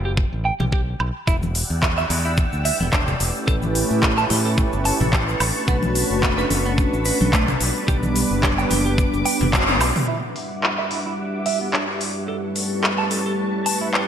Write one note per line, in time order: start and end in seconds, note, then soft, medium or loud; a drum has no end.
0.00 0.24 F#1 medium
0.05 0.11 G4 medium
0.17 kick loud
0.33 0.50 A1 medium
0.45 0.53 G5 medium
0.60 0.93 B1 medium
0.60 0.64 G4 medium
0.60 high conga medium
0.60 low conga medium
0.72 0.80 G4 medium
0.72 kick loud
1.00 1.10 B1 medium
1.00 high woodblock medium
1.27 1.62 E1 medium
1.27 1.35 E4 medium
1.27 3.46 D5 medium
1.27 3.46 F#5 medium
1.27 3.46 G5 medium
1.27 3.46 E6 medium
1.27 kick loud
1.27 cabasa medium
1.43 high conga medium
1.43 cabasa soft
1.55 open hi-hat loud
1.55 cabasa medium
1.70 2.03 E2 medium
1.70 cabasa soft
1.82 1.87 E4 medium
1.82 kick loud
1.82 clap loud
1.82 cabasa soft
1.98 2.04 E5 loud
1.98 cabasa soft
2.10 2.44 E2 medium
2.10 2.18 E4 medium
2.10 open hi-hat loud
2.10 high conga medium
2.10 cabasa medium
2.25 2.31 E4 medium
2.25 cabasa soft
2.37 kick loud
2.37 cabasa medium
2.53 2.70 D2 medium
2.53 cabasa soft
2.65 2.74 G3 medium
2.65 2.74 D4 medium
2.65 2.74 E4 medium
2.65 2.74 F#4 medium
2.65 2.74 B4 medium
2.65 2.76 E5 medium
2.65 open hi-hat loud
2.65 cabasa medium
2.80 3.14 E1 medium
2.80 2.87 B3 medium
2.80 high conga medium
2.80 cabasa soft
2.92 3.04 D4 medium
2.92 kick loud
2.92 clap loud
2.92 cabasa soft
3.08 low conga medium
3.08 cabasa soft
3.19 3.30 E1 medium
3.19 4.82 A3 medium
3.19 4.82 C#4 medium
3.19 4.82 E4 medium
3.19 4.83 G4 medium
3.19 4.83 B4 medium
3.19 open hi-hat loud
3.19 cabasa medium
3.35 cabasa soft
3.47 3.82 A1 medium
3.47 3.55 A4 medium
3.47 10.04 B4 medium
3.47 5.66 G5 medium
3.47 7.57 A5 medium
3.47 7.57 C#6 medium
3.47 kick loud
3.47 cabasa soft
3.62 high conga medium
3.62 cabasa soft
3.75 open hi-hat medium
3.75 cabasa medium
3.91 4.24 A2 medium
3.91 cabasa soft
4.02 4.07 A4 medium
4.02 kick loud
4.02 clap loud
4.02 cabasa soft
4.18 4.24 A5 loud
4.18 cabasa soft
4.30 4.65 A2 medium
4.30 4.38 A4 medium
4.30 open hi-hat loud
4.30 high conga medium
4.30 cabasa medium
4.45 4.52 A4 medium
4.45 cabasa soft
4.58 kick loud
4.58 cabasa medium
4.73 4.90 G1 medium
4.73 cabasa soft
4.85 4.94 A3 medium
4.85 4.94 C#4 medium
4.85 4.94 E4 medium
4.85 4.94 G4 medium
4.85 4.95 B4 medium
4.85 4.97 A5 medium
4.85 open hi-hat loud
4.85 cabasa medium
5.00 5.34 A1 medium
5.00 5.07 E4 medium
5.00 high conga medium
5.00 low conga medium
5.00 cabasa soft
5.13 5.24 G4 medium
5.13 kick loud
5.13 clap loud
5.13 cabasa soft
5.29 cabasa soft
5.40 5.50 A1 medium
5.40 7.02 A3 medium
5.40 7.02 C#4 medium
5.40 7.03 D4 medium
5.40 7.03 F#4 medium
5.40 7.03 B4 medium
5.40 open hi-hat medium
5.40 cabasa medium
5.40 high woodblock medium
5.56 cabasa soft
5.68 6.02 B1 medium
5.68 5.75 B3 medium
5.68 kick loud
5.68 cabasa soft
5.83 high conga medium
5.83 cabasa soft
5.95 open hi-hat loud
5.95 cabasa medium
6.10 6.44 F#1 medium
6.10 cabasa soft
6.23 6.28 B3 medium
6.23 kick loud
6.23 clap loud
6.23 cabasa soft
6.38 6.44 B4 loud
6.38 cabasa soft
6.50 6.85 F#1 medium
6.50 6.58 B3 medium
6.50 open hi-hat loud
6.50 high conga medium
6.50 cabasa medium
6.66 6.72 B3 medium
6.66 cabasa soft
6.78 kick loud
6.78 cabasa soft
6.93 7.10 A1 medium
6.93 cabasa soft
7.05 7.14 A3 medium
7.05 7.14 C#4 medium
7.05 7.14 D4 medium
7.05 7.15 F#4 medium
7.05 7.17 B4 medium
7.05 7.15 B4 medium
7.05 open hi-hat loud
7.05 cabasa loud
7.21 7.54 B1 medium
7.21 7.27 F#3 medium
7.21 high conga medium
7.21 cabasa soft
7.33 7.45 A3 medium
7.33 kick loud
7.33 clap loud
7.33 cabasa medium
7.48 low conga medium
7.48 cabasa soft
7.60 7.71 B1 medium
7.60 9.22 G3 medium
7.60 9.23 B3 medium
7.60 9.23 D4 medium
7.60 9.23 B4 medium
7.60 10.06 D6 medium
7.60 open hi-hat loud
7.60 cabasa loud
7.76 cabasa soft
7.88 8.23 B1 loud
7.88 7.96 G4 medium
7.88 kick loud
7.88 cabasa soft
8.03 high conga medium
8.03 cabasa soft
8.16 open hi-hat loud
8.16 cabasa medium
8.31 8.64 F#1 medium
8.31 cabasa soft
8.43 8.48 G4 medium
8.43 kick loud
8.43 clap loud
8.43 cabasa medium
8.58 8.64 G5 loud
8.58 cabasa soft
8.71 9.05 F#1 medium
8.71 8.78 G4 medium
8.71 open hi-hat loud
8.71 high conga medium
8.71 cabasa loud
8.86 8.92 G4 medium
8.86 cabasa soft
8.98 kick loud
8.98 cabasa medium
9.14 9.22 F#1 medium
9.14 cabasa soft
9.25 9.40 G3 medium
9.25 9.40 B3 medium
9.25 9.40 D4 medium
9.25 9.40 F#4 medium
9.25 9.40 B4 medium
9.25 9.37 G5 medium
9.25 open hi-hat loud
9.25 cabasa medium
9.41 9.81 F#1 medium
9.41 9.47 D4 medium
9.41 high conga medium
9.41 low conga medium
9.41 cabasa soft
9.53 9.64 F#4 medium
9.53 kick loud
9.53 clap loud
9.53 high tom medium
9.53 cabasa soft
9.68 high tom medium
9.68 cabasa soft
9.81 9.91 B1 loud
9.81 open hi-hat loud
9.81 cabasa loud
9.81 high woodblock medium
9.96 10.06 G3 medium
9.96 10.07 D4 medium
9.96 10.07 E4 medium
9.96 10.08 F#4 medium
9.96 10.08 B4 medium
9.96 mid tom medium
9.96 open hi-hat medium
9.96 cabasa soft
10.07 12.25 G3 medium
10.07 14.08 G3 medium
10.07 12.25 D4 medium
10.07 10.16 E4 medium
10.07 12.25 E4 medium
10.07 12.26 F#4 medium
10.07 12.26 B4 medium
10.07 12.26 E5 medium
10.07 12.26 F#5 medium
10.07 12.26 D6 medium
10.36 open hi-hat medium
10.63 10.68 E4 medium
10.63 clap loud
10.78 10.85 E5 medium
10.91 10.98 E4 medium
10.91 open hi-hat medium
11.06 11.12 E4 medium
11.46 11.57 E5 medium
11.46 open hi-hat medium
11.61 11.67 B3 medium
11.73 11.85 D4 medium
11.73 clap loud
12.01 open hi-hat medium
12.27 14.08 A3 medium
12.27 14.08 C#4 medium
12.27 14.08 E4 medium
12.27 14.08 G4 medium
12.27 12.36 A4 medium
12.27 14.08 B4 medium
12.27 14.08 A5 medium
12.27 14.08 C#6 medium
12.56 open hi-hat medium
12.83 12.88 A4 medium
12.83 clap loud
12.98 13.05 A5 medium
13.11 13.18 A4 medium
13.11 open hi-hat medium
13.26 13.32 A4 medium
13.66 13.77 A5 medium
13.66 open hi-hat loud
13.81 13.87 E4 medium
13.94 14.05 G4 medium
13.94 clap loud